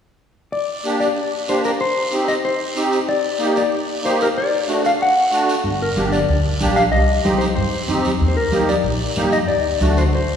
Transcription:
0.52 clean electric guitar D5, long guiro
0.85 accordion A#3 D4 G4, short guiro
1.00 clean electric guitar D5, short guiro
1.16 long guiro
1.48 accordion A#3 D4 G4, clean electric guitar C5, short guiro
1.64 clean electric guitar A#4, short guiro
1.80 clean electric guitar C5, long guiro
2.12 accordion C4 D#4 G4, short guiro
2.28 clean electric guitar D#5, short guiro
2.45 clean electric guitar C5, long guiro
2.76 accordion C4 D#4 G4, short guiro
2.92 short guiro
3.09 clean electric guitar D5, long guiro
3.39 accordion A#3 D#4 G4, short guiro
3.56 clean electric guitar D5, short guiro
3.72 long guiro
4.04 accordion A#3 D#4 G4, clean electric guitar C5, short guiro
4.21 clean electric guitar A#4, short guiro
4.36 clean electric guitar D5, long guiro
4.68 accordion A3 D4 F#4, short guiro
4.85 clean electric guitar F5, short guiro
5.01 clean electric guitar F#5, long guiro
5.32 accordion A3 D4 F#4, short guiro
5.49 short guiro
5.64 upright bass G1, high conga, long guiro
5.82 clean electric guitar A#4
5.96 upright bass G1, accordion A#3 D4 G4, high conga, short guiro
6.12 clean electric guitar D5, short guiro
6.29 upright bass D2, high conga, long guiro
6.61 upright bass A#1, accordion A#3 D4 G4, high conga, short guiro
6.76 clean electric guitar F5, short guiro
6.92 upright bass C2, clean electric guitar D#5, high conga, long guiro
7.24 upright bass C2, accordion C4 D#4 G4, high conga, short guiro
7.38 clean electric guitar C5, short guiro
7.55 upright bass G2, clean electric guitar C5, high conga, long guiro
7.88 upright bass D#2, accordion C4 D#4 G4, high conga, short guiro
8.05 short guiro
8.20 upright bass D#2, high conga, long guiro
8.28 clean electric guitar C5
8.37 clean electric guitar A#4
8.52 upright bass D#2, accordion A#3 D#4 G4, high conga, short guiro
8.69 clean electric guitar D5, short guiro
8.84 upright bass A#1, high conga, long guiro
9.16 upright bass G2, accordion A#3 D#4 G4, high conga, short guiro
9.32 clean electric guitar D#5, short guiro
9.48 upright bass D2, clean electric guitar D5, high conga, long guiro
9.81 upright bass D2, accordion A3 D4 F#4, high conga, short guiro
9.97 clean electric guitar C5, short guiro
10.12 upright bass A1, clean electric guitar C5, high conga, long guiro

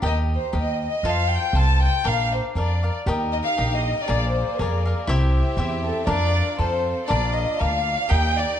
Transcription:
0.02 upright bass D#2, cavaquinho G4 A#4 D#5 G5
0.06 violin section D#5
0.35 violin section C5
0.53 upright bass D#2, cavaquinho G4 A#4 D#5 G5
0.58 violin section D#5
0.86 violin section D#5
1.03 upright bass F2, cavaquinho F4 A4 C5 F5, violin section F5
1.31 violin section G5
1.53 upright bass C2, cavaquinho F4 A4 C5 F5
1.58 violin section A5
1.84 violin section G5
2.04 upright bass A#1, cavaquinho D4 A#4 D5 F5, violin section F5
2.33 violin section C5
2.55 upright bass F2, cavaquinho D4 A#4 D5 F5, violin section D5
2.83 cavaquinho A#4 D5 F5
3.06 upright bass D#2, violin section D#4 G4 A#4, cavaquinho G4 A#4 D#5 G5
3.33 violin section D#5
3.44 violin section F5
3.57 upright bass A#1, cavaquinho G4 A#4 D#5 G5
3.79 violin section D#5
4.05 upright bass A#1, violin section A#3 G#4 D5, cavaquinho G#4 A#4 F5
4.10 cavaquinho D5
4.31 violin section C5
4.58 upright bass F2, cavaquinho G#4 A#4 D5 F5, violin section A#4
4.85 cavaquinho A#4 D5 F5
5.06 upright bass C2, violin section C4 G4 E5, cavaquinho E4 G4 C5 E5
5.57 upright bass E2, cavaquinho E4 G4 C5 E5
5.83 violin section A4
6.07 upright bass F2, cavaquinho D4 A#4 D5 F5, violin section D4 F4 A#4 D5
6.58 upright bass F2, violin section C4 A4 C5, cavaquinho F4 A4 C5 F5
7.07 upright bass A#1, violin section A#3 F4 D5, cavaquinho D4 A#4 D5 F5
7.34 violin section D#5
7.59 upright bass D2, cavaquinho D4 A#4 D5 F5, violin section F5
8.09 upright bass D#2, violin section D#4 G5, cavaquinho G4 A#4 D#5 G5
8.13 violin section A#3 G4
8.38 violin section D5

